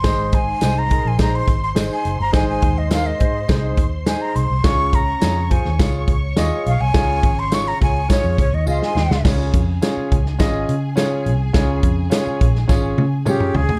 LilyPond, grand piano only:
<<
  \new Staff \with { instrumentName = "Grand piano" } { \time 4/4 \key des \lydian \tempo 4 = 104 <ees' aes' c''>8 r8 <ees' aes' c''>8 <ees' aes' bes'>8 <ees' aes' c''>8 r8 <ees' aes' c''>8 r8 | <ees' aes' c''>8 r8 <ees' aes' bes'>8 <ees' aes' c''>8 <ees' aes' c''>8 r8 <ees' aes' c''>8 r8 | <f' aes' des''>8 r8 <f' aes' des''>8 <f' aes' c''>8 <f' aes' des''>8 r8 <f' aes' ees''>8 r8 | <f' aes' des''>8 r8 <f' aes' des''>8 <f' aes' des''>8 <f' aes' des''>8 r8 <f' aes' ees''>8 r8 |
<des' f' aes' des''>8 r8 <des' f' aes' des''>8 r8 <des' f' aes' ees''>8 r8 <des' f' aes' des''>8 r8 | <des' f' aes' des''>8 r8 <des' f' aes' des''>8 r8 <des' f' aes' des''>8 r8 <des' f' aes' des'' f''>8 aes''8 | }
  \new Staff \with { instrumentName = "Grand piano" } { \clef bass \time 4/4 \key des \lydian aes,4. r2 r8 | aes,4. r2 r8 | des4. r2 r8 | des4. r2 r8 |
des4. r2 r8 | des4. r2 r8 | }
>>